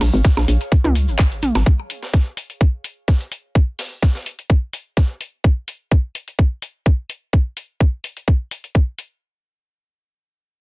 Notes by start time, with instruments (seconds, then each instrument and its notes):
Already playing: analog synth pad G#4 C#5 F5
0.01 fm bass A#1, snare, open hi-hat, percussion blips, shaker
0.13 fm bass G#1, shaker
0.23 kick, snare, tambourine, shaker
0.37 fm bass A#1, snare, percussion blips
0.48 fm bass A#1, open hi-hat, tambourine, shaker
0.61 open hi-hat, shaker
0.72 kick, tambourine, shaker
0.84 fm bass C#2, mid tom
0.95 open hi-hat, tambourine, shaker
1.08 fm bass G#1, shaker
1.19 kick, snare, clap, tambourine, shaker
1.32 closed hi-hat
1.42 fm bass A#1, open hi-hat, mid tom, tambourine, shaker
1.55 fm bass G#1, snare, tambourine, percussion blips, shaker
1.66 kick, tambourine
1.90 open hi-hat, tambourine
2.03 snare
2.14 kick, snare, tambourine
2.37 open hi-hat, tambourine
2.50 open hi-hat
2.61 kick, tambourine
2.84 open hi-hat, tambourine
3.08 kick, snare, tambourine
3.21 closed hi-hat
3.32 open hi-hat, tambourine
3.55 kick, tambourine
3.79 snare, open hi-hat
4.03 kick, snare, tambourine
4.15 snare
4.26 open hi-hat, tambourine
4.39 open hi-hat
4.50 kick, tambourine
4.73 open hi-hat, tambourine
4.97 kick, snare, tambourine
5.21 open hi-hat, tambourine
5.44 kick
5.68 open hi-hat
5.91 kick
6.15 open hi-hat
6.28 open hi-hat
6.39 kick
6.62 open hi-hat
6.86 kick
7.10 open hi-hat
7.33 kick
7.57 open hi-hat
7.80 kick
8.04 open hi-hat
8.17 open hi-hat
8.28 kick
8.51 open hi-hat
8.64 open hi-hat
8.75 kick
8.99 open hi-hat